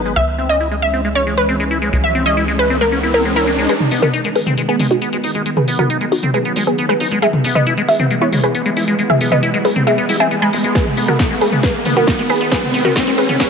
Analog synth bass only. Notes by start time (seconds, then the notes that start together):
Already playing: G#1
0.16 C#2
1.93 C#2
3.91 G#1
4.02 G#1
4.35 G#1
4.46 G#1
4.80 G#1
4.91 G#1
5.24 G#1
5.35 G#1
5.68 G#1
5.79 G#1
6.12 G#1
6.23 G#1
6.56 G#1
6.67 G#1
7.00 G#1
7.11 G#1
7.44 E1
7.55 E1
7.89 E1
8.00 E1
8.33 E1
8.44 E1
8.77 E1
8.88 E1
9.21 E1
9.32 E1
9.65 E1
9.76 E1
10.09 E1
10.20 E1
10.53 E1
10.64 E1
10.97 G#1
11.08 G#1
11.41 G#1
11.53 G#1
11.86 G#1
11.97 G#1
12.30 G#1
12.41 G#1
12.74 G#1
13.18 G#1
13.29 G#1